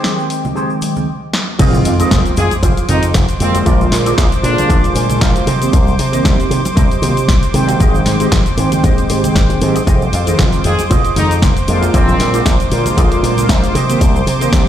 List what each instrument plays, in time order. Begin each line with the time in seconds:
Already playing: analog polysynth D#3 G#3 C4 G5, clean electric guitar G4 G#4 C5, analog synth pad D#5 D6
0.04 snare, high conga, shaker
0.19 shaker
0.30 open hi-hat, shaker
0.45 high bongo, high conga, low conga, shaker
0.55 clean electric guitar G4 G#4 C5, shaker
0.70 shaker
0.81 muted clean electric guitar stroke, open hi-hat, high conga, shaker
0.96 low conga, shaker
1.33 snare
1.59 slap bass F1, analog polysynth D#3 G#3 C4 F4, clean electric guitar F4 G#4 C5 D#5, analog synth pad C5 D6, kick, closed hi-hat, crash, sub drop, shaker
1.73 high conga, shaker
1.85 slap bass F2, muted clean electric guitar stroke, open hi-hat, shaker
1.99 analog polysynth D#3 G#3 C4 F4, clean electric guitar F4 G#4 C5 D#5, closed hi-hat, shaker
2.11 slap bass F1, kick, snare, closed hi-hat, high conga, shaker
2.26 closed hi-hat, shaker
2.36 slap bass F2, analog polysynth D#3 G#3 C4 F4, trumpet section G#4, muted clean electric guitar stroke, open hi-hat, shaker
2.50 closed hi-hat, high bongo, high conga, shaker
2.52 shaker
2.62 slap bass F1, clean electric guitar F4 G#4 C5 F5, kick, closed hi-hat, shaker
2.77 closed hi-hat, shaker
2.88 slap bass F2, analog polysynth D#3 G#3 C4 D#4, trumpet section D#4, open hi-hat, high bongo, high conga, low conga, shaker
3.03 closed hi-hat, shaker
3.14 slap bass F1, kick, snare, closed hi-hat, shaker
3.29 closed hi-hat, shaker
3.40 slap bass F2, analog polysynth D3 G#3 A#3 F4, trumpet section C4, open hi-hat, high conga, shaker
3.54 muted clean electric guitar stroke, closed hi-hat, high bongo, shaker
3.65 slap bass A#1, clean electric guitar F4 G#4 A#4 D5, kick, closed hi-hat, shaker
3.81 high conga, shaker
3.91 slap bass A#2, muted clean electric guitar stroke, snare, open hi-hat, shaker
4.05 analog polysynth D3 G#3 A#3 F4, clean electric guitar F4 G#4 A#4 D5, closed hi-hat, shaker
4.18 slap bass A#1, kick, snare, closed hi-hat, high conga, shaker
4.32 closed hi-hat, shaker
4.43 slap bass A#2, analog polysynth D3 G#3 A#3 F4, trumpet section D4, muted clean electric guitar stroke, open hi-hat, shaker
4.58 closed hi-hat, high bongo, high conga, low conga, shaker
4.69 slap bass A#1, clean electric guitar F4 G#4 A#4 D5, kick, closed hi-hat, shaker
4.84 closed hi-hat, high bongo, shaker
4.95 slap bass A#2, clean electric guitar G#5, open hi-hat, high conga, shaker
5.10 analog polysynth D3 G#3 A#3 F4, closed hi-hat, low conga, shaker
5.21 slap bass A#1, clean electric guitar F5, kick, snare, closed hi-hat, high bongo, shaker
5.36 closed hi-hat, high bongo, shaker
5.46 slap bass C3, clean electric guitar G4 A#4 C5 D#5, open hi-hat, high conga, shaker
5.61 analog polysynth D#3 A#3 C4 G4, closed hi-hat, shaker
5.73 slap bass C2, kick, closed hi-hat, shaker
5.87 high conga, shaker
5.98 slap bass C3, muted clean electric guitar stroke, open hi-hat, shaker
6.12 analog polysynth D#3 A#3 C4 G4, clean electric guitar G4 A#4 C5 D#5, closed hi-hat, shaker
6.25 slap bass C2, kick, snare, closed hi-hat, high conga, shaker
6.40 closed hi-hat, shaker
6.50 slap bass C3, analog polysynth D#3 A#3 C4 G4, muted clean electric guitar stroke, open hi-hat, shaker
6.65 closed hi-hat, high bongo, high conga, shaker
6.76 slap bass C2, clean electric guitar G4 A#4 C5 D#5, kick, closed hi-hat, shaker
6.91 closed hi-hat, shaker
7.02 slap bass C3, analog polysynth D#3 A#3 C4 F4, open hi-hat, high bongo, high conga, low conga, shaker
7.17 closed hi-hat, shaker
7.28 slap bass C2, kick, snare, closed hi-hat, shaker
7.43 closed hi-hat, shaker
7.53 slap bass C3, analog polysynth D#3 G#3 C4 G5, open hi-hat, high conga, shaker
7.68 muted clean electric guitar stroke, closed hi-hat, high bongo, shaker
7.79 slap bass G#1, clean electric guitar G4 G#4 C5 D#5, kick, closed hi-hat, shaker
7.94 high conga, shaker
8.05 slap bass G#2, muted clean electric guitar stroke, snare, open hi-hat, shaker
8.19 analog polysynth D#3 G#3 C4 G4, clean electric guitar G4 G#4 C5 D#5, closed hi-hat, shaker
8.32 slap bass G#1, kick, snare, closed hi-hat, high conga, shaker
8.46 closed hi-hat, shaker
8.57 slap bass G#2, analog polysynth D#3 G#3 C4 G5, muted clean electric guitar stroke, open hi-hat, shaker
8.72 closed hi-hat, high bongo, high conga, low conga, shaker
8.84 slap bass G#1, clean electric guitar G4 G#4 C5 D#5, kick, closed hi-hat, shaker
8.97 closed hi-hat, high bongo, shaker
9.10 slap bass G#2, analog polysynth D#3 G#3 C4 G4, open hi-hat, high conga, shaker
9.23 analog polysynth D#3 G#3 C4 G5, closed hi-hat, low conga, shaker
9.35 slap bass G#1, kick, snare, closed hi-hat, high bongo, shaker
9.50 closed hi-hat, high bongo, shaker
9.61 slap bass G#2, analog polysynth D#3 G#3 C4 G4, open hi-hat, high conga, shaker
9.74 muted clean electric guitar stroke, closed hi-hat, shaker
9.86 slap bass F1, clean electric guitar F4 G#4 C5 D#5, analog synth pad C5 D6, kick, closed hi-hat, shaker
10.01 high conga, shaker
10.13 slap bass F2, muted clean electric guitar stroke, open hi-hat, shaker
10.27 analog polysynth D#3 G#3 C4 F4, clean electric guitar F4 G#4 C5 D#5, closed hi-hat, shaker
10.39 slap bass F1, kick, snare, closed hi-hat, high conga, shaker
10.52 closed hi-hat, shaker
10.64 slap bass F2, analog polysynth D#3 G#3 C4 F4, trumpet section G#4, muted clean electric guitar stroke, open hi-hat, shaker
10.79 closed hi-hat, high bongo, high conga, shaker
10.90 slap bass F1, clean electric guitar F4 G#4 C5 D#5, kick, closed hi-hat, shaker
11.05 closed hi-hat, shaker
11.16 slap bass F2, analog polysynth D#3 G#3 C4 D#4, trumpet section D#4, open hi-hat, high bongo, high conga, low conga, shaker
11.31 closed hi-hat, shaker
11.42 slap bass F1, kick, snare, closed hi-hat, shaker
11.57 closed hi-hat, shaker
11.67 slap bass F2, analog polysynth D3 G#3 A#3 F4, open hi-hat, high conga, shaker
11.81 muted clean electric guitar stroke, closed hi-hat, high bongo, shaker
11.94 slap bass A#1, trumpet section C4, clean electric guitar F4 G#4 A#4 D5, kick, closed hi-hat, shaker
12.08 high conga, shaker
12.19 slap bass A#2, muted clean electric guitar stroke, snare, open hi-hat, shaker
12.33 analog polysynth D3 G#3 A#3 F4, clean electric guitar F4 G#4 A#4 D5, closed hi-hat, shaker
12.46 slap bass A#1, kick, snare, closed hi-hat, high conga, shaker
12.60 closed hi-hat, shaker
12.70 slap bass A#2, analog polysynth D3 G#3 A#3 F4, muted clean electric guitar stroke, open hi-hat, shaker
12.86 closed hi-hat, high bongo, high conga, low conga, shaker
12.97 slap bass A#1, clean electric guitar F4 G#4 A#4 D5, kick, closed hi-hat, shaker
13.12 closed hi-hat, high bongo, shaker
13.23 slap bass A#2, open hi-hat, high conga, shaker
13.37 analog polysynth D3 G#3 A#3 F4, closed hi-hat, low conga, shaker
13.49 slap bass A#1, kick, snare, closed hi-hat, high bongo, shaker
13.64 closed hi-hat, high bongo, shaker
13.75 slap bass C3, clean electric guitar G4 A#4 C5 D#5, open hi-hat, high conga, shaker
13.89 analog polysynth D#3 A#3 C4 G4, closed hi-hat, shaker
14.01 slap bass C2, kick, closed hi-hat, shaker
14.15 high conga, shaker
14.26 slap bass C3, muted clean electric guitar stroke, open hi-hat, shaker
14.40 analog polysynth D#3 A#3 C4 G4, clean electric guitar G4 A#4 C5 D#5, closed hi-hat, shaker
14.52 slap bass C2, kick, snare, closed hi-hat, high conga, shaker